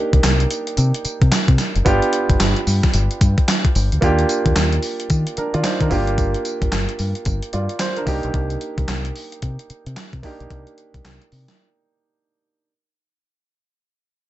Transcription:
Already playing: A#3 D4 D#4 G4
0.13 C2, kick, closed hi-hat
0.23 C2, snare, clap, closed hi-hat, tambourine
0.40 closed hi-hat
0.51 closed hi-hat, tambourine
0.67 closed hi-hat
0.77 C3, closed hi-hat, tambourine
0.94 closed hi-hat
1.05 muted fingered electric bass stroke, closed hi-hat, tambourine
1.22 C3, kick, closed hi-hat
1.32 snare, clap, closed hi-hat, tambourine
1.48 C3, kick, closed hi-hat
1.58 snare, closed hi-hat, tambourine
1.76 F#1, closed hi-hat
1.85 G1 B3 D4 F4 G4, kick, closed hi-hat, tambourine
2.02 closed hi-hat
2.13 closed hi-hat
2.30 G1, kick, closed hi-hat
2.40 G1, snare, clap, closed hi-hat, tambourine
2.56 closed hi-hat
2.67 G2, open hi-hat, tambourine
2.83 kick, snare, closed hi-hat
2.94 G1, closed hi-hat, tambourine
3.11 closed hi-hat
3.21 G2, kick, closed hi-hat, tambourine
3.38 kick, closed hi-hat
3.48 snare, clap, closed hi-hat, tambourine
3.65 kick, closed hi-hat
3.75 G1, open hi-hat, tambourine
3.92 D2, closed hi-hat
4.01 D#2 A#3 D4 F4 G4, kick, closed hi-hat, tambourine
4.19 closed hi-hat
4.29 closed hi-hat, tambourine
4.46 D#2, kick, closed hi-hat
4.56 D#2, snare, clap, closed hi-hat, tambourine
4.72 closed hi-hat
4.82 open hi-hat, tambourine
5.00 closed hi-hat
5.10 D#3, kick, closed hi-hat, tambourine
5.27 closed hi-hat
5.37 D4 A#4, muted fingered electric bass stroke, closed hi-hat
5.54 D#3 F4 D5, closed hi-hat
5.64 D#4 C5, snare, clap, closed hi-hat, tambourine
5.81 D#3 D4 A#4, kick, closed hi-hat
5.90 G1 A#3 D4 F4 G4, kick, open hi-hat, tambourine
6.07 closed hi-hat
6.18 kick, closed hi-hat, tambourine
6.34 closed hi-hat
6.45 closed hi-hat, tambourine
6.62 G1, kick, closed hi-hat
6.72 G1, snare, clap, closed hi-hat, tambourine
6.89 closed hi-hat
6.99 G2, open hi-hat, tambourine
7.15 closed hi-hat
7.25 G1, kick, closed hi-hat, tambourine
7.43 closed hi-hat
7.53 G2 F4 D5, closed hi-hat
7.69 closed hi-hat
7.79 C5, snare, clap, closed hi-hat, tambourine
7.97 D4 A#4, closed hi-hat
8.06 C2 A#3 D4 D#4 G4, kick, open hi-hat, tambourine
8.23 B1, closed hi-hat
8.34 C2, kick, closed hi-hat
8.50 closed hi-hat
8.61 closed hi-hat
8.78 C2, kick, closed hi-hat
8.88 C2, snare, clap, closed hi-hat
9.05 closed hi-hat
9.16 open hi-hat
9.32 closed hi-hat
9.42 C3, kick, closed hi-hat
9.59 closed hi-hat
9.70 muted fingered electric bass stroke, closed hi-hat
9.86 C3, closed hi-hat
9.96 snare, clap, closed hi-hat
10.13 C3, kick, closed hi-hat
10.23 A#3 D4 D#4 G4, kick, open hi-hat
10.40 B1, closed hi-hat
10.50 C2, kick, closed hi-hat
10.67 closed hi-hat
10.78 closed hi-hat
10.94 C2, kick, closed hi-hat
11.05 C2, snare, clap, closed hi-hat
11.22 closed hi-hat
11.32 C3, open hi-hat
11.48 snare, closed hi-hat

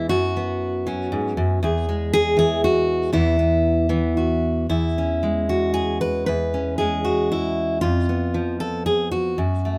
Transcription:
0.09 F#2 F#4
0.37 B3
0.87 F#3 C#4
1.12 G#2
1.37 F#2
1.63 E2 G#4
1.89 G#3
2.13 G#4
2.37 E3 G#4
2.64 F#4
3.13 E2 E3 B3 E4
3.39 B3
3.89 E3 B3
4.17 F#4
4.69 E2 E4
4.98 C#4
5.23 G#3
5.49 F#4
5.74 G#4
6.01 B4
6.26 E2 B4
6.54 C#4
6.78 G#3 G#4
7.04 F#4
7.32 E4
7.81 F2 F4
8.09 B3
8.34 F3
8.60 A4
8.86 G#4
9.12 F#4
9.38 F#2
9.65 A3

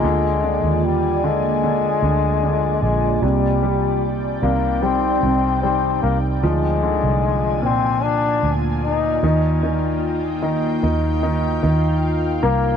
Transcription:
Already playing: G#3 A#3 F4 D5
0.03 D2 D3 G#5
0.44 D3
0.63 D#2
0.84 G3
1.24 D3 G#3
1.64 D3
2.02 D2 D3
2.43 D3
2.82 A#1 G#3
3.22 C2 C3 G3 C4 D#4 G5
3.63 G3
4.42 C2 C3 A#3
4.83 G3 C4
5.23 C2 C3
5.62 G3 C4
6.02 C2 A#3
6.42 D2 F3 G#3 A#3 F4 G#5
6.83 D3
7.03 C2
7.62 A#2 C4
8.03 D4
8.43 D2
8.84 D#4
9.23 D#2 D#3 D#5 G5
9.63 D#3
10.42 D#3
10.83 D#2 D#3 F5
11.23 D#3
11.63 D#2 D#3
12.43 C2 A#3

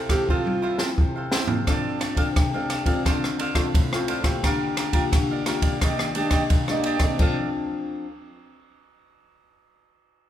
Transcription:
Already playing: C3
0.09 C4 E4 G4 A4 C5 F5, kick, cross-stick, ride
0.29 F3 C4 F4 A4 C5 F5, kick
0.47 high tom
0.62 E4 A4 C5 F5
0.78 C4 E4 A4 C5 F5, snare
0.98 C3, kick
1.16 A4 C5 F5
1.32 C4 E4 A4 C5 F5, snare
1.47 A4 C5 F5, floor tom
1.67 F3 C4 D4 A4 D5 F5, kick, cross-stick, ride
1.99 D4 A4 D5 F5, cross-stick, ride
2.16 C4 D4 A4 D5 F5, kick, ride
2.36 C3, kick, cross-stick, ride
2.54 C4 D4 A4 D5 F5
2.70 D4 A4 D5 F5, cross-stick, ride
2.86 C4 F4 A4 D5 F5, kick, ride
3.04 D3 D4 A4 C5 F5, kick, cross-stick, ride
3.24 cross-stick
3.39 D4 A4 C5 F5, ride
3.55 C4 D4 F4 A4 C5 F5, kick, cross-stick, ride
3.74 A2, kick, ride
3.92 C4 F4 A4 C5 F5, cross-stick
4.08 D4 A4 C5 F5, ride
4.23 A#3 F4 G4 A4 C5 F5, kick, cross-stick, ride
4.43 D3 G4 A#4 D5 F5, kick, cross-stick, ride
4.77 G4 A#4 D5 F5, cross-stick, ride
4.92 A#3 F4 G4 A#4 D5 F5, kick, ride
5.12 D3, kick, cross-stick, ride
5.31 A#4 D5 F5
5.46 A#3 F4 G4 A#4 D5 F5, cross-stick, ride
5.62 A#4 D5 F5, kick, ride
5.81 D#3 A#3 D4 G4 D5 D#5, kick, cross-stick, ride
5.99 cross-stick
6.15 A#3 D4 G4 D5 D#5, ride
6.31 D4 G4 D5 D#5, kick, cross-stick, ride
6.50 A#2, kick, ride
6.68 A#3 D4 G4 D5 D#5, cross-stick
6.84 D4 G4 D5 D#5, ride
6.99 C4 D4 G4 A4 D5 D#5, kick, cross-stick, ride
7.19 F3 C4 D4 A4 D5 F5, kick, crash

